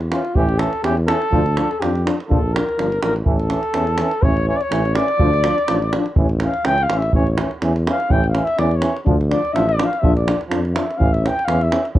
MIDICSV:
0, 0, Header, 1, 6, 480
1, 0, Start_track
1, 0, Tempo, 483871
1, 353, Time_signature, 2, 2, 24, 8
1, 11895, End_track
2, 0, Start_track
2, 0, Title_t, "Flugelhorn"
2, 0, Program_c, 0, 56
2, 116, Note_on_c, 0, 65, 81
2, 353, Note_on_c, 0, 67, 88
2, 368, Note_off_c, 0, 65, 0
2, 581, Note_on_c, 0, 69, 86
2, 596, Note_off_c, 0, 67, 0
2, 829, Note_off_c, 0, 69, 0
2, 836, Note_on_c, 0, 67, 93
2, 944, Note_off_c, 0, 67, 0
2, 1060, Note_on_c, 0, 69, 105
2, 1788, Note_on_c, 0, 67, 83
2, 1803, Note_off_c, 0, 69, 0
2, 2035, Note_off_c, 0, 67, 0
2, 2269, Note_on_c, 0, 69, 78
2, 2519, Note_on_c, 0, 70, 92
2, 2533, Note_off_c, 0, 69, 0
2, 3001, Note_off_c, 0, 70, 0
2, 3008, Note_on_c, 0, 70, 87
2, 3115, Note_off_c, 0, 70, 0
2, 3232, Note_on_c, 0, 69, 90
2, 4194, Note_on_c, 0, 73, 93
2, 4209, Note_off_c, 0, 69, 0
2, 4440, Note_off_c, 0, 73, 0
2, 4452, Note_on_c, 0, 73, 92
2, 4527, Note_on_c, 0, 74, 86
2, 4542, Note_off_c, 0, 73, 0
2, 4582, Note_on_c, 0, 73, 89
2, 4597, Note_off_c, 0, 74, 0
2, 4909, Note_on_c, 0, 74, 109
2, 4924, Note_off_c, 0, 73, 0
2, 6117, Note_off_c, 0, 74, 0
2, 6384, Note_on_c, 0, 77, 92
2, 6604, Note_on_c, 0, 79, 106
2, 6619, Note_off_c, 0, 77, 0
2, 6773, Note_on_c, 0, 77, 95
2, 6788, Note_off_c, 0, 79, 0
2, 6923, Note_on_c, 0, 76, 85
2, 6938, Note_off_c, 0, 77, 0
2, 7080, Note_off_c, 0, 76, 0
2, 7086, Note_on_c, 0, 73, 82
2, 7234, Note_off_c, 0, 73, 0
2, 7247, Note_on_c, 0, 73, 61
2, 7469, Note_off_c, 0, 73, 0
2, 7839, Note_on_c, 0, 77, 91
2, 8048, Note_on_c, 0, 79, 96
2, 8063, Note_off_c, 0, 77, 0
2, 8206, Note_off_c, 0, 79, 0
2, 8222, Note_on_c, 0, 77, 86
2, 8376, Note_on_c, 0, 76, 105
2, 8391, Note_off_c, 0, 77, 0
2, 8520, Note_on_c, 0, 74, 85
2, 8535, Note_off_c, 0, 76, 0
2, 8684, Note_on_c, 0, 73, 75
2, 8699, Note_off_c, 0, 74, 0
2, 8923, Note_off_c, 0, 73, 0
2, 9233, Note_on_c, 0, 74, 86
2, 9456, Note_on_c, 0, 76, 94
2, 9470, Note_off_c, 0, 74, 0
2, 9607, Note_on_c, 0, 74, 86
2, 9622, Note_off_c, 0, 76, 0
2, 9767, Note_on_c, 0, 77, 86
2, 9782, Note_off_c, 0, 74, 0
2, 9916, Note_on_c, 0, 76, 94
2, 9931, Note_off_c, 0, 77, 0
2, 10073, Note_off_c, 0, 76, 0
2, 10079, Note_on_c, 0, 74, 73
2, 10320, Note_off_c, 0, 74, 0
2, 10657, Note_on_c, 0, 76, 72
2, 10886, Note_on_c, 0, 77, 86
2, 10901, Note_off_c, 0, 76, 0
2, 11040, Note_on_c, 0, 76, 74
2, 11055, Note_off_c, 0, 77, 0
2, 11182, Note_on_c, 0, 79, 90
2, 11197, Note_off_c, 0, 76, 0
2, 11358, Note_on_c, 0, 77, 103
2, 11373, Note_off_c, 0, 79, 0
2, 11533, Note_on_c, 0, 76, 84
2, 11548, Note_off_c, 0, 77, 0
2, 11782, Note_off_c, 0, 76, 0
2, 11895, End_track
3, 0, Start_track
3, 0, Title_t, "French horn"
3, 0, Program_c, 1, 60
3, 117, Note_on_c, 1, 61, 62
3, 213, Note_off_c, 1, 61, 0
3, 350, Note_on_c, 1, 61, 76
3, 447, Note_off_c, 1, 61, 0
3, 599, Note_on_c, 1, 61, 57
3, 695, Note_off_c, 1, 61, 0
3, 852, Note_on_c, 1, 61, 64
3, 945, Note_off_c, 1, 61, 0
3, 1078, Note_on_c, 1, 61, 55
3, 1174, Note_off_c, 1, 61, 0
3, 1319, Note_on_c, 1, 62, 82
3, 1415, Note_off_c, 1, 62, 0
3, 1567, Note_on_c, 1, 62, 59
3, 1662, Note_off_c, 1, 62, 0
3, 1812, Note_on_c, 1, 62, 57
3, 1906, Note_off_c, 1, 62, 0
3, 2038, Note_on_c, 1, 62, 64
3, 2135, Note_off_c, 1, 62, 0
3, 2279, Note_on_c, 1, 62, 70
3, 2376, Note_off_c, 1, 62, 0
3, 2518, Note_on_c, 1, 62, 53
3, 2615, Note_off_c, 1, 62, 0
3, 2760, Note_on_c, 1, 62, 59
3, 2856, Note_off_c, 1, 62, 0
3, 3002, Note_on_c, 1, 62, 47
3, 3098, Note_off_c, 1, 62, 0
3, 3246, Note_on_c, 1, 61, 60
3, 3341, Note_off_c, 1, 61, 0
3, 3481, Note_on_c, 1, 61, 55
3, 3578, Note_off_c, 1, 61, 0
3, 3730, Note_on_c, 1, 61, 62
3, 3825, Note_off_c, 1, 61, 0
3, 3961, Note_on_c, 1, 61, 61
3, 4058, Note_off_c, 1, 61, 0
3, 4202, Note_on_c, 1, 61, 74
3, 4298, Note_off_c, 1, 61, 0
3, 4450, Note_on_c, 1, 61, 59
3, 4545, Note_off_c, 1, 61, 0
3, 4697, Note_on_c, 1, 61, 73
3, 4790, Note_off_c, 1, 61, 0
3, 4928, Note_on_c, 1, 61, 73
3, 5023, Note_off_c, 1, 61, 0
3, 5162, Note_on_c, 1, 62, 84
3, 5258, Note_off_c, 1, 62, 0
3, 5412, Note_on_c, 1, 62, 71
3, 5507, Note_off_c, 1, 62, 0
3, 5654, Note_on_c, 1, 62, 65
3, 5749, Note_off_c, 1, 62, 0
3, 5905, Note_on_c, 1, 62, 67
3, 5997, Note_off_c, 1, 62, 0
3, 6143, Note_on_c, 1, 61, 79
3, 6235, Note_off_c, 1, 61, 0
3, 6389, Note_on_c, 1, 61, 61
3, 6480, Note_off_c, 1, 61, 0
3, 6624, Note_on_c, 1, 61, 62
3, 6716, Note_off_c, 1, 61, 0
3, 6868, Note_on_c, 1, 61, 54
3, 6959, Note_off_c, 1, 61, 0
3, 7089, Note_on_c, 1, 61, 64
3, 7184, Note_off_c, 1, 61, 0
3, 7319, Note_on_c, 1, 61, 56
3, 7416, Note_off_c, 1, 61, 0
3, 7569, Note_on_c, 1, 61, 59
3, 7664, Note_off_c, 1, 61, 0
3, 7802, Note_on_c, 1, 61, 63
3, 7898, Note_off_c, 1, 61, 0
3, 8028, Note_on_c, 1, 61, 84
3, 8127, Note_off_c, 1, 61, 0
3, 8258, Note_on_c, 1, 61, 59
3, 8359, Note_off_c, 1, 61, 0
3, 8506, Note_on_c, 1, 61, 66
3, 8606, Note_off_c, 1, 61, 0
3, 8737, Note_on_c, 1, 61, 66
3, 8838, Note_off_c, 1, 61, 0
3, 8979, Note_on_c, 1, 62, 81
3, 9079, Note_off_c, 1, 62, 0
3, 9213, Note_on_c, 1, 62, 72
3, 9314, Note_off_c, 1, 62, 0
3, 9458, Note_on_c, 1, 62, 64
3, 9558, Note_off_c, 1, 62, 0
3, 9704, Note_on_c, 1, 62, 71
3, 9803, Note_off_c, 1, 62, 0
3, 9943, Note_on_c, 1, 62, 76
3, 10042, Note_off_c, 1, 62, 0
3, 10182, Note_on_c, 1, 62, 56
3, 10281, Note_off_c, 1, 62, 0
3, 10426, Note_on_c, 1, 62, 62
3, 10524, Note_off_c, 1, 62, 0
3, 10657, Note_on_c, 1, 62, 55
3, 10757, Note_off_c, 1, 62, 0
3, 10892, Note_on_c, 1, 61, 61
3, 10992, Note_off_c, 1, 61, 0
3, 11127, Note_on_c, 1, 61, 58
3, 11228, Note_off_c, 1, 61, 0
3, 11383, Note_on_c, 1, 61, 58
3, 11481, Note_off_c, 1, 61, 0
3, 11620, Note_on_c, 1, 61, 63
3, 11719, Note_off_c, 1, 61, 0
3, 11853, Note_on_c, 1, 61, 81
3, 11895, Note_off_c, 1, 61, 0
3, 11895, End_track
4, 0, Start_track
4, 0, Title_t, "Euphonium"
4, 0, Program_c, 2, 58
4, 111, Note_on_c, 2, 52, 52
4, 208, Note_off_c, 2, 52, 0
4, 363, Note_on_c, 2, 52, 83
4, 458, Note_off_c, 2, 52, 0
4, 594, Note_on_c, 2, 52, 66
4, 690, Note_off_c, 2, 52, 0
4, 832, Note_on_c, 2, 52, 77
4, 930, Note_off_c, 2, 52, 0
4, 1087, Note_on_c, 2, 52, 60
4, 1181, Note_off_c, 2, 52, 0
4, 1308, Note_on_c, 2, 53, 92
4, 1407, Note_off_c, 2, 53, 0
4, 1565, Note_on_c, 2, 53, 58
4, 1660, Note_off_c, 2, 53, 0
4, 1797, Note_on_c, 2, 53, 71
4, 1894, Note_off_c, 2, 53, 0
4, 2049, Note_on_c, 2, 53, 55
4, 2144, Note_off_c, 2, 53, 0
4, 2276, Note_on_c, 2, 53, 79
4, 2373, Note_off_c, 2, 53, 0
4, 2512, Note_on_c, 2, 53, 50
4, 2611, Note_off_c, 2, 53, 0
4, 2757, Note_on_c, 2, 53, 65
4, 2854, Note_off_c, 2, 53, 0
4, 3000, Note_on_c, 2, 53, 53
4, 3097, Note_off_c, 2, 53, 0
4, 3224, Note_on_c, 2, 52, 74
4, 3324, Note_off_c, 2, 52, 0
4, 3475, Note_on_c, 2, 52, 54
4, 3573, Note_off_c, 2, 52, 0
4, 3708, Note_on_c, 2, 52, 66
4, 3808, Note_off_c, 2, 52, 0
4, 3964, Note_on_c, 2, 52, 65
4, 4060, Note_off_c, 2, 52, 0
4, 4200, Note_on_c, 2, 52, 72
4, 4297, Note_off_c, 2, 52, 0
4, 4440, Note_on_c, 2, 52, 74
4, 4537, Note_off_c, 2, 52, 0
4, 4672, Note_on_c, 2, 52, 80
4, 4770, Note_off_c, 2, 52, 0
4, 4910, Note_on_c, 2, 52, 64
4, 5009, Note_off_c, 2, 52, 0
4, 5148, Note_on_c, 2, 53, 89
4, 5247, Note_off_c, 2, 53, 0
4, 5398, Note_on_c, 2, 53, 67
4, 5496, Note_off_c, 2, 53, 0
4, 5639, Note_on_c, 2, 53, 75
4, 5736, Note_off_c, 2, 53, 0
4, 5898, Note_on_c, 2, 53, 58
4, 5992, Note_off_c, 2, 53, 0
4, 6120, Note_on_c, 2, 52, 71
4, 6217, Note_off_c, 2, 52, 0
4, 6363, Note_on_c, 2, 52, 49
4, 6459, Note_off_c, 2, 52, 0
4, 6593, Note_on_c, 2, 52, 74
4, 6691, Note_off_c, 2, 52, 0
4, 6844, Note_on_c, 2, 52, 57
4, 6940, Note_off_c, 2, 52, 0
4, 7085, Note_on_c, 2, 52, 75
4, 7181, Note_off_c, 2, 52, 0
4, 7331, Note_on_c, 2, 52, 55
4, 7426, Note_off_c, 2, 52, 0
4, 7565, Note_on_c, 2, 52, 79
4, 7661, Note_off_c, 2, 52, 0
4, 7809, Note_on_c, 2, 52, 74
4, 7904, Note_off_c, 2, 52, 0
4, 8049, Note_on_c, 2, 52, 82
4, 8144, Note_off_c, 2, 52, 0
4, 8284, Note_on_c, 2, 52, 64
4, 8380, Note_off_c, 2, 52, 0
4, 8527, Note_on_c, 2, 52, 83
4, 8622, Note_off_c, 2, 52, 0
4, 8752, Note_on_c, 2, 52, 73
4, 8850, Note_off_c, 2, 52, 0
4, 8993, Note_on_c, 2, 53, 79
4, 9091, Note_off_c, 2, 53, 0
4, 9232, Note_on_c, 2, 53, 56
4, 9329, Note_off_c, 2, 53, 0
4, 9470, Note_on_c, 2, 53, 79
4, 9568, Note_off_c, 2, 53, 0
4, 9706, Note_on_c, 2, 53, 69
4, 9804, Note_off_c, 2, 53, 0
4, 9942, Note_on_c, 2, 53, 85
4, 10041, Note_off_c, 2, 53, 0
4, 10173, Note_on_c, 2, 53, 60
4, 10274, Note_off_c, 2, 53, 0
4, 10403, Note_on_c, 2, 53, 74
4, 10506, Note_off_c, 2, 53, 0
4, 10665, Note_on_c, 2, 53, 58
4, 10763, Note_off_c, 2, 53, 0
4, 10900, Note_on_c, 2, 52, 79
4, 10999, Note_off_c, 2, 52, 0
4, 11152, Note_on_c, 2, 52, 55
4, 11248, Note_off_c, 2, 52, 0
4, 11393, Note_on_c, 2, 52, 77
4, 11489, Note_off_c, 2, 52, 0
4, 11606, Note_on_c, 2, 52, 64
4, 11707, Note_off_c, 2, 52, 0
4, 11895, End_track
5, 0, Start_track
5, 0, Title_t, "Tuba"
5, 0, Program_c, 3, 58
5, 0, Note_on_c, 3, 40, 66
5, 131, Note_off_c, 3, 40, 0
5, 365, Note_on_c, 3, 33, 106
5, 628, Note_off_c, 3, 33, 0
5, 831, Note_on_c, 3, 40, 96
5, 1097, Note_off_c, 3, 40, 0
5, 1314, Note_on_c, 3, 38, 97
5, 1580, Note_off_c, 3, 38, 0
5, 1800, Note_on_c, 3, 41, 80
5, 2065, Note_off_c, 3, 41, 0
5, 2283, Note_on_c, 3, 34, 93
5, 2547, Note_off_c, 3, 34, 0
5, 2766, Note_on_c, 3, 31, 75
5, 2981, Note_off_c, 3, 31, 0
5, 2997, Note_on_c, 3, 33, 75
5, 3216, Note_off_c, 3, 33, 0
5, 3242, Note_on_c, 3, 33, 96
5, 3507, Note_off_c, 3, 33, 0
5, 3719, Note_on_c, 3, 40, 80
5, 3985, Note_off_c, 3, 40, 0
5, 4198, Note_on_c, 3, 33, 100
5, 4464, Note_off_c, 3, 33, 0
5, 4675, Note_on_c, 3, 33, 95
5, 4942, Note_off_c, 3, 33, 0
5, 5161, Note_on_c, 3, 38, 100
5, 5426, Note_off_c, 3, 38, 0
5, 5647, Note_on_c, 3, 33, 81
5, 5911, Note_off_c, 3, 33, 0
5, 6130, Note_on_c, 3, 33, 99
5, 6393, Note_off_c, 3, 33, 0
5, 6605, Note_on_c, 3, 37, 75
5, 6821, Note_off_c, 3, 37, 0
5, 6844, Note_on_c, 3, 33, 73
5, 7060, Note_off_c, 3, 33, 0
5, 7080, Note_on_c, 3, 33, 95
5, 7345, Note_off_c, 3, 33, 0
5, 7563, Note_on_c, 3, 40, 89
5, 7827, Note_off_c, 3, 40, 0
5, 8043, Note_on_c, 3, 33, 111
5, 8307, Note_off_c, 3, 33, 0
5, 8515, Note_on_c, 3, 40, 94
5, 8781, Note_off_c, 3, 40, 0
5, 8991, Note_on_c, 3, 38, 103
5, 9258, Note_off_c, 3, 38, 0
5, 9472, Note_on_c, 3, 33, 84
5, 9738, Note_off_c, 3, 33, 0
5, 9947, Note_on_c, 3, 34, 107
5, 10214, Note_off_c, 3, 34, 0
5, 10429, Note_on_c, 3, 41, 80
5, 10694, Note_off_c, 3, 41, 0
5, 10914, Note_on_c, 3, 33, 104
5, 11178, Note_off_c, 3, 33, 0
5, 11387, Note_on_c, 3, 40, 99
5, 11652, Note_off_c, 3, 40, 0
5, 11865, Note_on_c, 3, 33, 111
5, 11895, Note_off_c, 3, 33, 0
5, 11895, End_track
6, 0, Start_track
6, 0, Title_t, "Davul"
6, 7, Note_on_c, 9, 37, 21
6, 106, Note_off_c, 9, 37, 0
6, 116, Note_on_c, 9, 37, 60
6, 215, Note_off_c, 9, 37, 0
6, 245, Note_on_c, 9, 37, 20
6, 344, Note_off_c, 9, 37, 0
6, 351, Note_on_c, 9, 43, 78
6, 450, Note_off_c, 9, 43, 0
6, 483, Note_on_c, 9, 37, 22
6, 583, Note_off_c, 9, 37, 0
6, 589, Note_on_c, 9, 37, 64
6, 688, Note_off_c, 9, 37, 0
6, 722, Note_on_c, 9, 37, 24
6, 821, Note_off_c, 9, 37, 0
6, 835, Note_on_c, 9, 37, 61
6, 935, Note_off_c, 9, 37, 0
6, 965, Note_on_c, 9, 37, 18
6, 1064, Note_off_c, 9, 37, 0
6, 1074, Note_on_c, 9, 37, 73
6, 1173, Note_off_c, 9, 37, 0
6, 1208, Note_on_c, 9, 37, 26
6, 1307, Note_off_c, 9, 37, 0
6, 1315, Note_on_c, 9, 43, 75
6, 1414, Note_off_c, 9, 43, 0
6, 1448, Note_on_c, 9, 37, 26
6, 1547, Note_off_c, 9, 37, 0
6, 1558, Note_on_c, 9, 37, 61
6, 1657, Note_off_c, 9, 37, 0
6, 1696, Note_on_c, 9, 37, 22
6, 1795, Note_off_c, 9, 37, 0
6, 1809, Note_on_c, 9, 37, 61
6, 1908, Note_off_c, 9, 37, 0
6, 1939, Note_on_c, 9, 37, 25
6, 2038, Note_off_c, 9, 37, 0
6, 2054, Note_on_c, 9, 37, 66
6, 2153, Note_off_c, 9, 37, 0
6, 2186, Note_on_c, 9, 37, 28
6, 2285, Note_off_c, 9, 37, 0
6, 2295, Note_on_c, 9, 43, 87
6, 2394, Note_off_c, 9, 43, 0
6, 2540, Note_on_c, 9, 37, 71
6, 2639, Note_off_c, 9, 37, 0
6, 2665, Note_on_c, 9, 37, 22
6, 2764, Note_off_c, 9, 37, 0
6, 2769, Note_on_c, 9, 37, 55
6, 2869, Note_off_c, 9, 37, 0
6, 2899, Note_on_c, 9, 37, 23
6, 2998, Note_off_c, 9, 37, 0
6, 3001, Note_on_c, 9, 37, 71
6, 3100, Note_off_c, 9, 37, 0
6, 3134, Note_on_c, 9, 37, 23
6, 3234, Note_off_c, 9, 37, 0
6, 3234, Note_on_c, 9, 43, 79
6, 3333, Note_off_c, 9, 43, 0
6, 3368, Note_on_c, 9, 37, 24
6, 3467, Note_off_c, 9, 37, 0
6, 3471, Note_on_c, 9, 37, 60
6, 3570, Note_off_c, 9, 37, 0
6, 3599, Note_on_c, 9, 37, 24
6, 3698, Note_off_c, 9, 37, 0
6, 3709, Note_on_c, 9, 37, 63
6, 3808, Note_off_c, 9, 37, 0
6, 3840, Note_on_c, 9, 37, 26
6, 3939, Note_off_c, 9, 37, 0
6, 3945, Note_on_c, 9, 37, 68
6, 4044, Note_off_c, 9, 37, 0
6, 4080, Note_on_c, 9, 37, 26
6, 4180, Note_off_c, 9, 37, 0
6, 4192, Note_on_c, 9, 43, 95
6, 4291, Note_off_c, 9, 43, 0
6, 4333, Note_on_c, 9, 37, 22
6, 4432, Note_off_c, 9, 37, 0
6, 4570, Note_on_c, 9, 37, 24
6, 4669, Note_off_c, 9, 37, 0
6, 4679, Note_on_c, 9, 37, 70
6, 4779, Note_off_c, 9, 37, 0
6, 4814, Note_on_c, 9, 37, 23
6, 4913, Note_off_c, 9, 37, 0
6, 4915, Note_on_c, 9, 37, 72
6, 5014, Note_off_c, 9, 37, 0
6, 5042, Note_on_c, 9, 37, 26
6, 5141, Note_off_c, 9, 37, 0
6, 5153, Note_on_c, 9, 43, 88
6, 5252, Note_off_c, 9, 43, 0
6, 5293, Note_on_c, 9, 37, 25
6, 5392, Note_off_c, 9, 37, 0
6, 5394, Note_on_c, 9, 37, 73
6, 5493, Note_off_c, 9, 37, 0
6, 5536, Note_on_c, 9, 37, 26
6, 5636, Note_off_c, 9, 37, 0
6, 5636, Note_on_c, 9, 37, 73
6, 5735, Note_off_c, 9, 37, 0
6, 5777, Note_on_c, 9, 37, 22
6, 5876, Note_off_c, 9, 37, 0
6, 5881, Note_on_c, 9, 37, 66
6, 5980, Note_off_c, 9, 37, 0
6, 6009, Note_on_c, 9, 37, 29
6, 6108, Note_off_c, 9, 37, 0
6, 6112, Note_on_c, 9, 43, 98
6, 6211, Note_off_c, 9, 43, 0
6, 6243, Note_on_c, 9, 37, 23
6, 6343, Note_off_c, 9, 37, 0
6, 6348, Note_on_c, 9, 37, 61
6, 6447, Note_off_c, 9, 37, 0
6, 6484, Note_on_c, 9, 37, 22
6, 6583, Note_off_c, 9, 37, 0
6, 6594, Note_on_c, 9, 37, 74
6, 6693, Note_off_c, 9, 37, 0
6, 6724, Note_on_c, 9, 37, 23
6, 6824, Note_off_c, 9, 37, 0
6, 6840, Note_on_c, 9, 37, 73
6, 6940, Note_off_c, 9, 37, 0
6, 6967, Note_on_c, 9, 37, 26
6, 7066, Note_off_c, 9, 37, 0
6, 7072, Note_on_c, 9, 43, 85
6, 7171, Note_off_c, 9, 43, 0
6, 7209, Note_on_c, 9, 37, 19
6, 7308, Note_off_c, 9, 37, 0
6, 7317, Note_on_c, 9, 37, 71
6, 7416, Note_off_c, 9, 37, 0
6, 7449, Note_on_c, 9, 37, 22
6, 7548, Note_off_c, 9, 37, 0
6, 7558, Note_on_c, 9, 37, 58
6, 7657, Note_off_c, 9, 37, 0
6, 7697, Note_on_c, 9, 37, 27
6, 7796, Note_off_c, 9, 37, 0
6, 7810, Note_on_c, 9, 37, 71
6, 7909, Note_off_c, 9, 37, 0
6, 7936, Note_on_c, 9, 37, 22
6, 8035, Note_off_c, 9, 37, 0
6, 8038, Note_on_c, 9, 43, 82
6, 8137, Note_off_c, 9, 43, 0
6, 8173, Note_on_c, 9, 37, 22
6, 8272, Note_off_c, 9, 37, 0
6, 8279, Note_on_c, 9, 37, 60
6, 8379, Note_off_c, 9, 37, 0
6, 8405, Note_on_c, 9, 37, 26
6, 8504, Note_off_c, 9, 37, 0
6, 8517, Note_on_c, 9, 37, 50
6, 8616, Note_off_c, 9, 37, 0
6, 8644, Note_on_c, 9, 37, 20
6, 8743, Note_off_c, 9, 37, 0
6, 8748, Note_on_c, 9, 37, 68
6, 8847, Note_off_c, 9, 37, 0
6, 8894, Note_on_c, 9, 37, 27
6, 8993, Note_off_c, 9, 37, 0
6, 8995, Note_on_c, 9, 43, 86
6, 9094, Note_off_c, 9, 43, 0
6, 9135, Note_on_c, 9, 37, 23
6, 9234, Note_off_c, 9, 37, 0
6, 9240, Note_on_c, 9, 37, 57
6, 9339, Note_off_c, 9, 37, 0
6, 9373, Note_on_c, 9, 37, 21
6, 9472, Note_off_c, 9, 37, 0
6, 9482, Note_on_c, 9, 37, 59
6, 9581, Note_off_c, 9, 37, 0
6, 9611, Note_on_c, 9, 37, 24
6, 9710, Note_off_c, 9, 37, 0
6, 9716, Note_on_c, 9, 37, 73
6, 9816, Note_off_c, 9, 37, 0
6, 9850, Note_on_c, 9, 37, 29
6, 9949, Note_off_c, 9, 37, 0
6, 9957, Note_on_c, 9, 43, 87
6, 10056, Note_off_c, 9, 43, 0
6, 10086, Note_on_c, 9, 37, 25
6, 10185, Note_off_c, 9, 37, 0
6, 10196, Note_on_c, 9, 37, 71
6, 10295, Note_off_c, 9, 37, 0
6, 10325, Note_on_c, 9, 37, 26
6, 10424, Note_off_c, 9, 37, 0
6, 10431, Note_on_c, 9, 37, 68
6, 10530, Note_off_c, 9, 37, 0
6, 10565, Note_on_c, 9, 37, 21
6, 10664, Note_off_c, 9, 37, 0
6, 10672, Note_on_c, 9, 37, 73
6, 10771, Note_off_c, 9, 37, 0
6, 10818, Note_on_c, 9, 37, 30
6, 10917, Note_off_c, 9, 37, 0
6, 10922, Note_on_c, 9, 43, 83
6, 11021, Note_off_c, 9, 43, 0
6, 11053, Note_on_c, 9, 37, 23
6, 11152, Note_off_c, 9, 37, 0
6, 11166, Note_on_c, 9, 37, 58
6, 11265, Note_off_c, 9, 37, 0
6, 11299, Note_on_c, 9, 37, 26
6, 11392, Note_off_c, 9, 37, 0
6, 11392, Note_on_c, 9, 37, 61
6, 11491, Note_off_c, 9, 37, 0
6, 11520, Note_on_c, 9, 37, 25
6, 11619, Note_off_c, 9, 37, 0
6, 11628, Note_on_c, 9, 37, 73
6, 11727, Note_off_c, 9, 37, 0
6, 11757, Note_on_c, 9, 37, 29
6, 11856, Note_off_c, 9, 37, 0
6, 11856, Note_on_c, 9, 43, 96
6, 11895, Note_off_c, 9, 43, 0
6, 11895, End_track
0, 0, End_of_file